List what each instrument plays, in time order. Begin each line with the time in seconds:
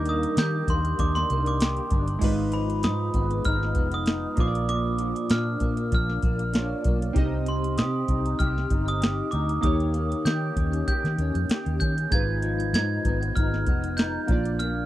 Already playing: fingered electric bass D#2, clean electric guitar D#3 D#4, synth keys G3 D4 D#4 A#4
0.06 clean electric guitar A#3, glockenspiel D#6, closed hi-hat
0.23 closed hi-hat
0.37 fingered electric bass D#3, clean electric guitar G4, glockenspiel G6, snare, closed hi-hat
0.67 fingered electric bass D#2, clean electric guitar A#3, glockenspiel C6, kick, closed hi-hat
0.85 closed hi-hat
0.99 fingered electric bass D#2, clean electric guitar D4, glockenspiel D6, kick, closed hi-hat
1.15 glockenspiel C6, snare, closed hi-hat
1.30 fingered electric bass C2, clean electric guitar A#3, closed hi-hat
1.46 glockenspiel D6, closed hi-hat
1.60 clean electric guitar G4, snare, closed hi-hat
1.77 closed hi-hat
1.91 fingered electric bass G1, clean electric guitar D4, kick, closed hi-hat
2.08 closed hi-hat
2.19 fingered electric bass G#1, clean electric guitar G#2, synth keys G#3 D#4 F4, kick, closed hi-hat, crash
2.24 synth keys B4
2.52 clean electric guitar F3, glockenspiel B5, closed hi-hat
2.70 closed hi-hat
2.83 fingered electric bass G#2, clean electric guitar D#4, glockenspiel D#6, snare, closed hi-hat
3.14 fingered electric bass G#1, clean electric guitar B3, kick, closed hi-hat
3.31 closed hi-hat
3.45 fingered electric bass G#1, clean electric guitar D#4, glockenspiel F6, kick, closed hi-hat
3.63 snare
3.75 fingered electric bass F1, clean electric guitar B3, kick, closed hi-hat
3.92 glockenspiel D#6, closed hi-hat
4.06 clean electric guitar D#4, snare, closed hi-hat
4.36 fingered electric bass A#1, clean electric guitar A#2, synth keys A#3 D4 F4, kick, closed hi-hat
4.40 synth keys C5, glockenspiel D6
4.47 synth keys D5
4.55 closed hi-hat
4.68 clean electric guitar A#2, glockenspiel D6, closed hi-hat
4.98 clean electric guitar F3, closed hi-hat
5.16 closed hi-hat
5.30 fingered electric bass A#2, clean electric guitar D4, glockenspiel F6, snare, closed hi-hat
5.60 fingered electric bass A#2, clean electric guitar A#3, kick, closed hi-hat
5.77 closed hi-hat
5.92 fingered electric bass A#1, clean electric guitar D4, glockenspiel F6, kick, closed hi-hat
6.10 snare
6.22 fingered electric bass A#1, clean electric guitar A#3, kick, closed hi-hat
6.39 closed hi-hat
6.53 synth keys A#3 D4 F4 C#5, clean electric guitar D4, snare, closed hi-hat
6.62 synth keys D5
6.84 fingered electric bass B1, clean electric guitar A#3, kick, closed hi-hat
7.02 closed hi-hat
7.13 fingered electric bass C2, clean electric guitar C3, synth keys C4 D#4 G4, kick, closed hi-hat
7.18 synth keys D#5
7.46 clean electric guitar C4, glockenspiel C6, closed hi-hat
7.64 closed hi-hat
7.78 fingered electric bass C3, clean electric guitar G4, glockenspiel D#6, snare, closed hi-hat
8.08 fingered electric bass C2, clean electric guitar D#4, kick, closed hi-hat
8.26 closed hi-hat
8.39 fingered electric bass C2, clean electric guitar G4, glockenspiel F6, kick, closed hi-hat
8.58 snare
8.70 fingered electric bass G1, clean electric guitar D#4, kick, closed hi-hat
8.88 glockenspiel D#6, closed hi-hat
9.01 clean electric guitar G4, snare, closed hi-hat
9.31 fingered electric bass D2, clean electric guitar D#4, glockenspiel D6, closed hi-hat
9.49 closed hi-hat
9.61 fingered electric bass D#2, clean electric guitar D#3, synth keys A#3 D#4 G4, glockenspiel D#6, kick, closed hi-hat
9.67 synth keys C#5
9.80 closed hi-hat
9.94 clean electric guitar A#3, closed hi-hat
10.12 closed hi-hat
10.25 fingered electric bass D#3, clean electric guitar G4, glockenspiel G6, snare, closed hi-hat
10.56 fingered electric bass D#2, clean electric guitar C#4, kick, closed hi-hat
10.73 closed hi-hat
10.87 clean electric guitar G4, glockenspiel G6, kick, closed hi-hat
11.04 fingered electric bass D#3, snare, closed hi-hat
11.18 fingered electric bass D#2, clean electric guitar C#4, closed hi-hat
11.35 fingered electric bass F2, closed hi-hat
11.49 clean electric guitar G4, muted fingered electric bass stroke, snare, closed hi-hat
11.66 fingered electric bass D#2, closed hi-hat
11.80 fingered electric bass D#3, clean electric guitar C#4, glockenspiel G6, kick, closed hi-hat
11.98 closed hi-hat
12.10 fingered electric bass G#1, clean electric guitar G#2, synth keys G#3 D#4 F4, glockenspiel G#6, kick, closed hi-hat
12.15 synth keys B4
12.42 clean electric guitar F3, closed hi-hat
12.60 closed hi-hat
12.73 fingered electric bass G#2, clean electric guitar D#4, glockenspiel G#6, snare, closed hi-hat
13.05 fingered electric bass G#1, clean electric guitar B3, kick, closed hi-hat
13.23 closed hi-hat
13.36 fingered electric bass G#1, clean electric guitar D#4, glockenspiel F6, kick, closed hi-hat
13.54 snare
13.67 fingered electric bass F1, clean electric guitar B3, kick, closed hi-hat
13.84 closed hi-hat
13.97 clean electric guitar D#4, glockenspiel G6, snare, closed hi-hat
14.27 fingered electric bass A#1, clean electric guitar A#2, synth keys A#3 D4 F4, kick, closed hi-hat
14.32 synth keys D5
14.45 closed hi-hat
14.59 clean electric guitar A#2, glockenspiel F6, closed hi-hat